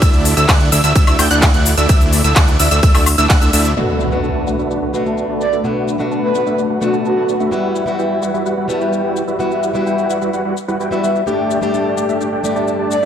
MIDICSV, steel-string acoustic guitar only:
0, 0, Header, 1, 2, 480
1, 0, Start_track
1, 0, Key_signature, 2, "minor"
1, 0, Tempo, 468750
1, 19, Time_signature, 4, 2, 24, 8
1, 13365, End_track
2, 0, Start_track
2, 0, Title_t, "Steel-string acoustic guitar"
2, 0, Program_c, 0, 25
2, 3851, Note_on_c, 0, 47, 68
2, 3858, Note_on_c, 0, 57, 61
2, 3860, Note_on_c, 0, 59, 65
2, 3860, Note_on_c, 0, 62, 64
2, 3864, Note_on_c, 0, 66, 76
2, 4187, Note_off_c, 0, 47, 0
2, 4188, Note_off_c, 0, 57, 0
2, 4190, Note_off_c, 0, 59, 0
2, 4191, Note_off_c, 0, 62, 0
2, 4193, Note_off_c, 0, 66, 0
2, 4206, Note_on_c, 0, 47, 76
2, 4213, Note_on_c, 0, 57, 68
2, 4219, Note_on_c, 0, 59, 72
2, 4225, Note_on_c, 0, 62, 72
2, 4231, Note_on_c, 0, 66, 86
2, 5024, Note_off_c, 0, 47, 0
2, 5027, Note_off_c, 0, 57, 0
2, 5030, Note_off_c, 0, 59, 0
2, 5033, Note_off_c, 0, 62, 0
2, 5036, Note_off_c, 0, 66, 0
2, 5047, Note_on_c, 0, 47, 61
2, 5053, Note_on_c, 0, 57, 57
2, 5059, Note_on_c, 0, 59, 57
2, 5066, Note_on_c, 0, 62, 59
2, 5072, Note_on_c, 0, 66, 69
2, 5744, Note_off_c, 0, 47, 0
2, 5748, Note_off_c, 0, 57, 0
2, 5750, Note_off_c, 0, 59, 0
2, 5754, Note_off_c, 0, 62, 0
2, 5757, Note_off_c, 0, 66, 0
2, 5772, Note_on_c, 0, 47, 70
2, 5778, Note_on_c, 0, 57, 66
2, 5782, Note_on_c, 0, 59, 65
2, 5782, Note_on_c, 0, 62, 63
2, 5785, Note_on_c, 0, 66, 77
2, 6107, Note_off_c, 0, 47, 0
2, 6109, Note_off_c, 0, 57, 0
2, 6111, Note_off_c, 0, 59, 0
2, 6112, Note_off_c, 0, 62, 0
2, 6113, Note_off_c, 0, 66, 0
2, 6126, Note_on_c, 0, 47, 78
2, 6132, Note_on_c, 0, 57, 73
2, 6138, Note_on_c, 0, 59, 70
2, 6144, Note_on_c, 0, 62, 73
2, 6150, Note_on_c, 0, 66, 87
2, 6944, Note_off_c, 0, 47, 0
2, 6947, Note_off_c, 0, 57, 0
2, 6950, Note_off_c, 0, 59, 0
2, 6953, Note_off_c, 0, 62, 0
2, 6956, Note_off_c, 0, 66, 0
2, 6968, Note_on_c, 0, 47, 64
2, 6974, Note_on_c, 0, 57, 61
2, 6980, Note_on_c, 0, 59, 59
2, 6987, Note_on_c, 0, 62, 59
2, 6993, Note_on_c, 0, 66, 70
2, 7665, Note_off_c, 0, 47, 0
2, 7668, Note_off_c, 0, 57, 0
2, 7671, Note_off_c, 0, 59, 0
2, 7674, Note_off_c, 0, 62, 0
2, 7677, Note_off_c, 0, 66, 0
2, 7693, Note_on_c, 0, 55, 70
2, 7697, Note_on_c, 0, 59, 65
2, 7703, Note_on_c, 0, 64, 65
2, 7706, Note_on_c, 0, 66, 78
2, 8027, Note_off_c, 0, 55, 0
2, 8030, Note_off_c, 0, 59, 0
2, 8032, Note_off_c, 0, 64, 0
2, 8034, Note_off_c, 0, 66, 0
2, 8047, Note_on_c, 0, 55, 79
2, 8055, Note_on_c, 0, 59, 72
2, 8063, Note_on_c, 0, 64, 72
2, 8071, Note_on_c, 0, 66, 87
2, 8864, Note_off_c, 0, 55, 0
2, 8868, Note_off_c, 0, 59, 0
2, 8872, Note_off_c, 0, 64, 0
2, 8876, Note_off_c, 0, 66, 0
2, 8888, Note_on_c, 0, 55, 67
2, 8896, Note_on_c, 0, 59, 61
2, 8904, Note_on_c, 0, 64, 60
2, 8912, Note_on_c, 0, 66, 73
2, 9585, Note_off_c, 0, 55, 0
2, 9589, Note_off_c, 0, 59, 0
2, 9593, Note_off_c, 0, 64, 0
2, 9597, Note_off_c, 0, 66, 0
2, 9614, Note_on_c, 0, 55, 70
2, 9617, Note_on_c, 0, 59, 66
2, 9624, Note_on_c, 0, 64, 66
2, 9625, Note_on_c, 0, 66, 77
2, 9948, Note_off_c, 0, 55, 0
2, 9949, Note_off_c, 0, 59, 0
2, 9952, Note_off_c, 0, 64, 0
2, 9953, Note_off_c, 0, 66, 0
2, 9968, Note_on_c, 0, 55, 81
2, 9976, Note_on_c, 0, 59, 73
2, 9984, Note_on_c, 0, 64, 71
2, 9992, Note_on_c, 0, 66, 86
2, 10785, Note_off_c, 0, 55, 0
2, 10789, Note_off_c, 0, 59, 0
2, 10793, Note_off_c, 0, 64, 0
2, 10797, Note_off_c, 0, 66, 0
2, 11172, Note_on_c, 0, 55, 68
2, 11176, Note_on_c, 0, 59, 63
2, 11181, Note_on_c, 0, 64, 62
2, 11185, Note_on_c, 0, 66, 76
2, 11507, Note_off_c, 0, 55, 0
2, 11509, Note_off_c, 0, 59, 0
2, 11511, Note_off_c, 0, 64, 0
2, 11513, Note_off_c, 0, 66, 0
2, 11530, Note_on_c, 0, 43, 71
2, 11539, Note_on_c, 0, 55, 64
2, 11539, Note_on_c, 0, 57, 65
2, 11543, Note_on_c, 0, 62, 66
2, 11546, Note_on_c, 0, 67, 78
2, 11867, Note_off_c, 0, 43, 0
2, 11869, Note_off_c, 0, 55, 0
2, 11870, Note_off_c, 0, 57, 0
2, 11872, Note_off_c, 0, 62, 0
2, 11874, Note_off_c, 0, 67, 0
2, 11886, Note_on_c, 0, 43, 78
2, 11892, Note_on_c, 0, 55, 73
2, 11898, Note_on_c, 0, 57, 74
2, 11905, Note_on_c, 0, 62, 73
2, 11911, Note_on_c, 0, 67, 88
2, 12704, Note_off_c, 0, 43, 0
2, 12707, Note_off_c, 0, 55, 0
2, 12710, Note_off_c, 0, 57, 0
2, 12713, Note_off_c, 0, 62, 0
2, 12716, Note_off_c, 0, 67, 0
2, 12726, Note_on_c, 0, 43, 66
2, 12732, Note_on_c, 0, 55, 59
2, 12738, Note_on_c, 0, 57, 60
2, 12745, Note_on_c, 0, 62, 59
2, 12751, Note_on_c, 0, 67, 73
2, 13365, Note_off_c, 0, 43, 0
2, 13365, Note_off_c, 0, 55, 0
2, 13365, Note_off_c, 0, 57, 0
2, 13365, Note_off_c, 0, 62, 0
2, 13365, Note_off_c, 0, 67, 0
2, 13365, End_track
0, 0, End_of_file